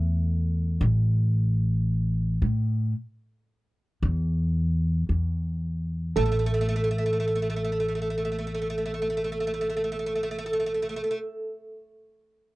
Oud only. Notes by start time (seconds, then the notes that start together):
Already playing: A3
6.17 A3
6.26 A3
6.32 A3
6.39 A3
6.46 A3
6.54 A3
6.61 A3
6.69 A3
6.76 A3
6.84 A3
6.91 A3
6.98 A3
7.06 A3
7.13 A3
7.20 A3
7.28 A3
7.35 A3
7.42 A3
7.50 A3
7.56 A3
7.64 A3
7.72 A3
7.80 A3
7.88 A3
7.95 A3
8.02 A3
8.10 A3
8.18 A3
8.25 A3
8.32 A3
8.39 A3
8.47 A3
8.54 A3
8.62 A3
8.70 A3
8.78 A3
8.86 A3
8.94 A3
9.02 A3
9.10 A3
9.17 A3
9.24 A3
9.32 A3
9.40 A3
9.47 A3
9.54 A3
9.61 A3
9.70 A3
9.77 A3
9.84 A3
9.92 A3
9.99 A3
10.06 A3
10.16 A3
10.23 A3
10.31 A3
10.39 A3
10.46 A3
10.53 A3
10.60 A3
10.66 A3
10.74 A3
10.82 A3
10.89 A3
10.96 A3
11.04 A3
11.11 A3